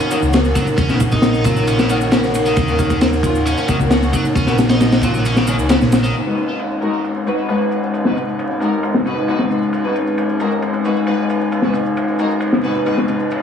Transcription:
Already playing: D#4 A#4 C#5 F#5
0.00 ride, shaker
0.10 D#3 A#3 C#4 F#4, ride, shaker
0.22 C#2, shaker
0.33 D#3 A#3 C#4 F#4, snare, ride, shaker
0.45 shaker
0.55 F#3, kick, ride, shaker
0.67 shaker
0.78 D#2 C#4, kick, ride, shaker
0.89 A#1 C#3 D#3 A#3 C#4 F#4, snare, shaker
1.00 kick, ride, shaker
1.12 D#4, kick, shaker
1.22 snare, ride, shaker
1.34 shaker
1.44 D#3 F#3 A#3 C#4 F4, kick, ride, shaker
1.56 shaker
1.67 C#4, ride, shaker
1.79 C#3, snare, shaker
1.89 D#3 A#3 C#4 F#4, ride, shaker
2.01 shaker
2.12 C#3 D#3 A#3 C#4 F#4, snare, ride, shaker
2.24 snare, shaker
2.35 ride, shaker
2.46 D#3, shaker
2.57 D#2 D#3, kick, ride, shaker
2.68 D#3 A#3 C#4 F#4, shaker
2.79 kick, ride, shaker
2.90 kick, shaker
3.01 F#3, snare, ride, shaker
3.13 shaker
3.23 D#3 A#3 C#4 F4, kick, ride, shaker
3.35 shaker
3.46 C#4, ride, shaker
3.57 C#4, ride, shaker
3.68 D#3 A#3 C#4 F#4, kick, ride, shaker
3.80 C#2, kick, shaker
3.91 D#3 A#3 C#4 F#4, snare, ride, shaker
4.03 shaker
4.13 F#3, kick, ride, shaker
4.25 shaker
4.35 D#2 C#4, kick, ride, shaker
4.47 A#1 C#3 D#3 A#3 C#4 F#4, snare, shaker
4.58 snare, ride, shaker
4.69 D#4, snare, ride, shaker
4.80 snare, ride, shaker
4.92 snare, ride, shaker
5.02 D#3 F#3 A#3 C#4 F4, kick, ride, shaker
5.14 shaker
5.25 C#4, ride, shaker
5.36 C#3, snare, shaker
5.47 D#3 A#3 C#4 F#4, ride, shaker
5.59 C#2, shaker
5.69 C#3 D#3 A#3 C#4 F#4, snare, ride, shaker
5.81 A#1, snare, shaker
5.92 snare, ride, shaker
6.03 D#3, shaker
6.14 G#3 D#4 B4 F#5, ride, shaker
6.26 G#3 D#4 F#4 B4, shaker
6.37 ride, shaker
6.59 ride, shaker
6.71 shaker
6.81 G#3 D#4 F#4 A#4, ride, shaker
6.93 shaker
7.04 ride, shaker
7.16 ride, shaker
7.27 G#3 D#4 F#4 B4, ride, shaker
7.38 shaker
7.48 G#3 D#4 F#4 B4, ride, shaker
7.61 shaker
7.71 ride, shaker
7.83 shaker
7.93 ride, shaker
8.05 G#3 D#4 F#4 B4, snare, shaker
8.16 ride, shaker
8.28 shaker
8.39 ride, shaker
8.51 shaker
8.60 G#3 D#4 F#4 A#4, ride, shaker
8.73 shaker
8.83 ride, shaker
8.94 snare, shaker
9.05 G#3 D#4 F#4 B4, ride, shaker
9.18 shaker
9.28 G#3 D#4 F#4 B4, ride, shaker
9.39 snare, shaker
9.50 ride, shaker
9.63 shaker
9.73 G#5, ride, shaker
9.85 G#3 D#4 F#4 B4, shaker
9.95 ride, shaker
10.07 shaker
10.18 ride, shaker
10.29 shaker
10.40 G#3 D#4 F#4 A#4, ride, shaker
10.51 shaker
10.62 ride, shaker
10.74 ride, shaker
10.85 G#3 D#4 F#4 B4, ride, shaker
10.96 shaker
11.07 G#3 D#4 F#4 B4, ride, shaker
11.19 shaker
11.30 ride, shaker
11.41 shaker
11.52 ride, shaker
11.62 G#3 D#4 F#4 B4, snare, shaker
11.73 ride, shaker
11.86 shaker
11.97 ride, shaker
12.08 shaker
12.19 G#3 D#4 F#4 A#4, ride, shaker
12.30 shaker
12.40 ride, shaker
12.53 snare, shaker
12.64 G#3 D#4 F#4 B4, ride, shaker
12.75 shaker
12.86 G#3 D#4 F#4 B4, ride, shaker
12.97 snare, shaker
13.08 ride, shaker
13.20 shaker
13.30 D#3 C#5 F#5, ride, shaker

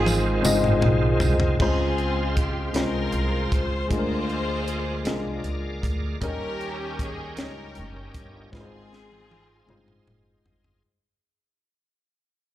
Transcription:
Already playing: G#1 G#2 D#3 G#3 C4 D#4 F4 G#4 C5
0.06 high tom, tambourine
0.42 G1 G#3 C4 D#4 F4 D#5, mid tom, tambourine
0.64 mid tom
0.81 B1, mid tom
1.20 C2, floor tom, tambourine
1.40 floor tom
1.59 C#2 C#3 G#3 C4 F4 C5 F5 C6, kick, crash
1.64 G#4
1.98 closed hi-hat
2.37 G4, kick, closed hi-hat
2.73 C2 G#3 C4 C#4 F4 C5, snare, closed hi-hat
2.77 A#4
3.12 C2, closed hi-hat
3.52 C#2 C5, kick, closed hi-hat
3.88 D2 D3 G#3 A#3 D4 F4 G#4 D5 A#5, kick, closed hi-hat
3.92 F4 G#4 C5
3.98 A#4
4.29 closed hi-hat
4.68 closed hi-hat
5.03 C2 G#3 A#3 D4 F4 A#4, closed hi-hat
5.07 snare
5.43 C#2, closed hi-hat
5.83 D2, kick, closed hi-hat
6.21 D#2 D#3 G3 A#3 C#4 D#4 G4 A#4 C#5 D#5 G5, kick, closed hi-hat
6.25 C#4
6.61 closed hi-hat
6.99 G#4, kick, closed hi-hat
7.36 C#2 G3 A#3 C#4 D#4 C#5, snare, closed hi-hat
7.41 C#4 G4 A#4
7.75 F#1, closed hi-hat
8.14 G1, kick, closed hi-hat
8.51 G#1 G#2 G#3 C4 D#4 F4 G#4 B4 F5, kick, snare
8.55 C4 F4 G#4 D#5 C6
8.61 C5
8.93 snare
9.12 high tom
9.31 high tom
9.66 G1 G#3 C4 D#4 F4, mid tom
9.70 C5
9.88 mid tom
10.06 F#1, mid tom
10.44 G1, floor tom
10.64 floor tom

